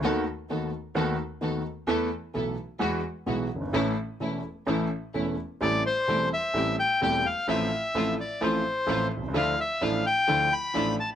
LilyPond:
<<
  \new Staff \with { instrumentName = "Bandoneon" } { \time 4/4 \key a \major \tempo 4 = 129 r1 | r1 | r1 | \key a \minor d''8 c''4 e''4 g''8 g''8 f''8 |
e''4. d''8 c''4. r8 | f''8 e''8 f''8 g''4 b''4 a''8 | }
  \new Staff \with { instrumentName = "String section" } { \time 4/4 \key a \major <dis b dis' a'>8 r8 <dis b dis' a'>8 r8 <dis b dis' a'>8 r8 <dis b dis' a'>8 r8 | <b e' a'>8 r8 <b e' a'>8 r8 <gis e' fis'>8 r8 <gis e' fis'>8 r8 | <a cis' e'>8 r8 <a cis' e'>8 r8 <a cis' e'>8 r8 <a cis' e'>8 r8 | \key a \minor <a c' g'>8 r8 <a c' g'>8 r8 <a c' g'>8 r8 <a c' g'>8 r8 |
<a e' f'>8 r8 <a e' f'>8 r8 <a e' f'>8 r8 <a e' f'>8 r8 | <d' e' f'>8 r8 <d' e' f'>8 r8 <d' e' f'>8 r8 <d' e' f'>8 r8 | }
  \new Staff \with { instrumentName = "Grand piano" } { \clef bass \time 4/4 \key a \major <dis, dis a b fis'>8 r8 <dis, dis a b fis'>8 r8 <dis, dis a b fis'>8 r8 <dis, dis a b fis'>8 r8 | <e, e a b a'>8 r8 <b,, b, e a b a'>8 r8 <e, e gis b fis'>8 r8 <b,, b, e gis b fis'>8 r32 fis,,32 g,,32 gis,,32 | <a,, a, e a cis' a'>8 r8 <e,, e, e a cis' a'>8 r8 <a,, a, e a cis' a'>8 r8 <e,, e, e a cis' a'>8 r8 | \key a \minor <a,, a, g c' e' a'>8 r8 <e,, e, g c' e' a'>8 r8 <a,, a, g c' e' a'>8 r8 <e,, e, g c' e' a'>8 r8 |
<a,, a, f c' e' a'>8 r8 <a,, a, f c' e' a'>8 r8 <a,, a, f c' e' a'>8 r8 <a,, a, f c' e' a'>8 r32 b,,32 c,32 cis,32 | <d, d f d' e' a'>8 r8 <a,, a, f d' e' a'>8 r8 <d, d f d' e' a'>8 r8 <a,, a, f d' e' a'>8 r8 | }
>>